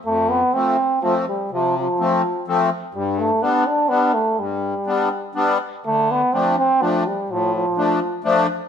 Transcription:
X:1
M:3/4
L:1/8
Q:1/4=124
K:Flyd
V:1 name="Accordion"
F,,2 [F,A,C] z [F,A,C] z | C,2 [F,A,C] z [F,A,C] z | G,,2 [G,B,D] z [G,B,D] z | G,,2 [G,B,D] z [G,B,D] z |
D,2 [F,A,D] z [F,A,D] z | A,,2 [F,A,D] z [F,A,D] z |]
V:2 name="Euphonium"
A, B, C2 F, G, | F, F,3 z2 | G, A, B, D B, A, | G,4 z2 |
A, B, C C F, G, | F, F,3 z2 |]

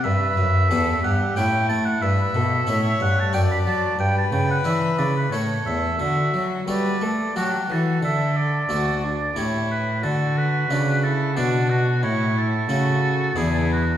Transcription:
X:1
M:3/4
L:1/16
Q:1/4=90
K:D
V:1 name="Oboe"
e6 f2 g2 a f | e6 f a g b a2 | g a g f e2 d B c2 e2 | e3 z d4 F2 A2 |
e2 d6 c2 B2 | A2 B4 A2 D2 F2 | c2 A6 ^G2 F2 |]
V:2 name="Violin"
B4 A2 G2 E4 | B2 A2 c4 d4 | B8 A4 | F4 B2 A2 G2 F2 |
A4 F2 D2 E4 | F4 D2 E2 F4 | E4 F4 E4 |]
V:3 name="Harpsichord"
z4 [B,GB]4 [CEA]4 | z4 [CEA]4 [DFA]4 | z4 [DEB]4 [A,EA]4 | z4 [A,FA]4 [A,FA]4 |
z4 [A,FA]4 [A,EG]4 | z4 [A,DF]4 [A,DF]4 | z4 [A,CE]4 [B,DE]4 |]
V:4 name="Harpsichord" clef=bass
G,,2 F,,2 E,,2 G,,2 A,,2 A,2 | G,,2 B,,2 A,,2 G,,2 F,,2 F,2 | G,,2 C,2 E,2 C,2 A,,2 E,,2 | D,2 F,2 G,2 A,2 F,2 E,2 |
D,4 D,,4 A,,4 | D,4 C,4 B,,4 | A,,4 C,4 E,,4 |]
V:5 name="Cello" clef=bass
G,,2 F,,2 E,,2 G,,2 A,,2 A,2 | G,,2 B,,2 A,,2 G,,2 F,,2 F,2 | G,,2 C,2 E,2 C,2 A,,2 E,,2 | D,2 F,2 G,2 A,2 F,2 E,2 |
D,4 D,,4 A,,4 | D,4 C,4 B,,4 | A,,4 C,4 E,,4 |]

